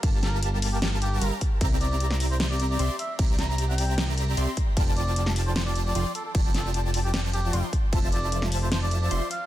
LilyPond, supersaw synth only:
\new Staff \with { instrumentName = "Supersaw synth" } { \time 4/4 \key f \major \tempo 4 = 152 <g g' bes' f'' a''>2. <g g' bes' f'' bes''>8 r8 | <c' g' d'' e'' bes''>2. <c' g' d'' e'' c'''>8 r8 | <c' g' d'' e'' bes''>2. <c' g' d'' e'' c'''>8 r8 | <f f' d'' g'' a''>2. <f f' d'' g'' c'''>8 r8 |
<f f' d'' g'' a''>2. <f f' d'' g'' c'''>8 r8 | <f f' c'' e'' a''>2. <f f' c'' e'' c'''>8 r8 | }